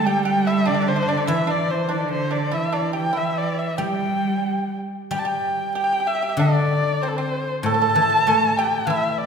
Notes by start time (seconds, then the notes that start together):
Already playing: D3
0.05 G3 G4 G5
0.25 G4 G5
0.47 E4 E5
0.65 D3 D4 D5
0.74 D4
0.82 D4
0.88 D4 C5
0.96 D4
1.03 D4
1.08 D3 D4 D5
1.17 D4
1.27 E3 E4 E5
1.47 D4 D5
1.71 C5
1.89 D3 D4 D5
2.12 C5
2.31 D4 D5
2.51 E3 E4 E5
2.72 D4 D5
2.93 G4 G5
3.13 E3 E4
3.17 E5
3.38 D5
3.59 E5
3.78 G3 G4 G5
5.11 G3 G4 G5
5.19 A5
5.25 G4 G5
5.75 G4 G5
5.84 G4
5.92 G4
6.00 G4
6.07 G4 E5
6.15 G4
6.22 G4
6.29 G4
6.37 D3 D4 D5
7.02 C4 C5
7.08 A4
7.16 C4 C5
7.63 A2 A4 A5
7.74 A4
7.82 A4
7.89 A4
7.95 E3 A4
8.02 A4
8.10 A4
8.17 A4
8.27 A3 A4
8.57 G4 G5
8.87 E3 E4 E5
9.12 E5
9.18 D5